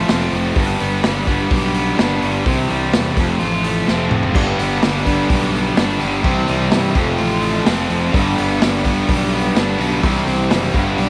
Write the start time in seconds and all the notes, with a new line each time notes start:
Already playing: F2 A3 F4
0.08 F1 F3 A3 C4 F4 A4, snare, open hi-hat
0.32 F1 F3, open hi-hat
0.55 G1 G2 G3 B3 D4 B4, kick, open hi-hat
0.80 G1 B3, open hi-hat
1.03 G1 G3, snare, open hi-hat
1.27 G3 B3 D4 B4, kick, open hi-hat
1.51 B1 G4, kick, open hi-hat
1.74 B3, open hi-hat
1.98 G1 G3 B3 D4 B4, snare, open hi-hat
2.22 G1 G3, open hi-hat
2.45 C2 C3 E3 G3 C4 E4 C5, kick, open hi-hat
2.69 C2 G3, open hi-hat
2.93 E2 E3, snare, open hi-hat
3.16 F1 F2 F3 A3 C4 F4 A4, kick, open hi-hat
3.39 A1 F4, open hi-hat
3.64 A3, open hi-hat
3.87 F1 F3 A3 C4 F4 A4, snare
4.11 F1 F3, mid tom
4.23 floor tom
4.33 G1 G2 D3 G3 B3 D4 B4, kick, crash
4.58 G1 B3, open hi-hat
4.82 G1 G3, snare, open hi-hat
5.04 G3 B3 D4 B4, kick, open hi-hat
5.29 B1 G4, kick, open hi-hat
5.54 B3, open hi-hat
5.76 G1 G3 B3 D4 B4, snare, open hi-hat
5.99 G1 G2 D3 G3, open hi-hat
6.23 C2 C3 E3 G3 C4 E4 C5, kick, open hi-hat
6.48 C2 G3, open hi-hat
6.71 G2 E3, snare, open hi-hat
6.93 F1 F2 C3 F3 A3 C4 F4, kick, open hi-hat
6.97 A4
7.18 A1 F4, open hi-hat
7.42 A3, open hi-hat
7.65 F1 F3 A3 C4 F4 A4, snare, open hi-hat
7.90 F1 F3, open hi-hat
8.11 G1 G2 D3 G3 B3 D4 B4, kick, open hi-hat
8.37 G1 B3, open hi-hat
8.62 G1 G3, snare, open hi-hat
8.84 G3 B3 D4 B4, kick, open hi-hat
9.09 B1 G4, kick, open hi-hat
9.33 B3, open hi-hat
9.54 G1 G3 B3 D4 B4, snare, open hi-hat
9.77 B1 G2 D3 G3, open hi-hat
10.02 C2 C3 E3 G3 C4 E4 C5, kick, open hi-hat
10.27 C2 C4, open hi-hat
10.51 F#1 G3, snare, open hi-hat
10.72 G1 G2 D3 G3 B3 D4 B4, kick, open hi-hat
10.97 B1 G4, open hi-hat